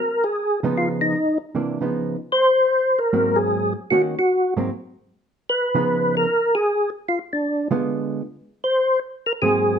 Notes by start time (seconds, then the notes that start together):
Already playing: A#4
0.24 G#4
0.63 C#3 F3 B3 D#4
0.78 F4
1.01 D#4
1.55 C3 E3 A#3 D4
1.81 C#3 F3 B3 D#4
2.32 C5
2.99 A#4
3.13 G#2 F#3 A#3 C4
3.36 G#4
3.91 D#3 A#3 C#4 F#4
4.19 F#4
4.57 G#2 F#3 A#3 C4
5.49 B4
5.75 C#3 F3 B3 D#4
6.17 A#4
6.55 G#4
7.08 F4
7.33 D4
7.71 D3 G#3 B3 F4
8.64 C5
9.26 A#4
9.42 G#2 F#3 A#3 C4 G#4